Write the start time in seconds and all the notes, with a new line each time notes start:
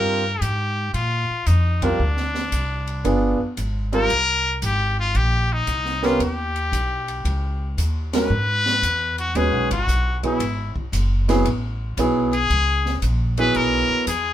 Already playing: G2 G3 C4 F4 A#4
0.41 G#2 G4, hi-hat pedal, ride
0.94 A#2 F4, ride
1.30 muted upright bass stroke
1.46 F2 D#4, hi-hat pedal, ride
1.82 G3 C4 D4 F4 A#4, kick, ride
2.00 D2
2.17 snare
2.34 snare
2.52 C2, hi-hat pedal, ride
2.87 ride
3.05 G1 B3 D4 F4 G#4, ride
3.40 muted upright bass stroke
3.57 G#1, hi-hat pedal, ride
3.92 G3 C4 F4 A#4, ride
4.10 C2, ride
4.62 G#1 G4, hi-hat pedal, ride
5.00 F4
5.15 A#1 G4, ride
5.53 D#4
5.67 C2, hi-hat pedal, ride
5.85 snare
6.02 B3 C#4 F4 G4 A#4, snare
6.20 D#2 G4, ride
6.56 ride
6.72 B1, hi-hat pedal, ride
7.08 ride
7.25 C#2, ride
7.78 D#2, hi-hat pedal, ride
8.13 G#3 C#4 F#4 A#4 B4, snare, ride
8.30 G#2
8.66 snare
8.82 E2, hi-hat pedal, ride
9.18 F#4, ride
9.35 D#2 G#3 C#4 F#4 G#4 B4, ride
9.52 B1
9.70 G#1 F#4, kick, ride
9.87 B1, hi-hat pedal
10.23 F#3 B3 E4 G#4, kick, ride
10.39 G#1, ride
10.76 muted upright bass stroke, kick
10.92 F#1, hi-hat pedal, ride
11.29 F#3 B3 E4 G#4, snare, ride
11.44 A1, ride
11.97 B1 F#3 B3 E4 G#4, hi-hat pedal, ride
12.33 G#4, ride
12.50 C#2, ride
12.86 snare
13.02 A#1, hi-hat pedal, ride
13.37 F#3 B3 E4 G#4 B4, ride
13.54 B1 A#4, ride
13.89 muted upright bass stroke
14.07 E2 G#4, hi-hat pedal, ride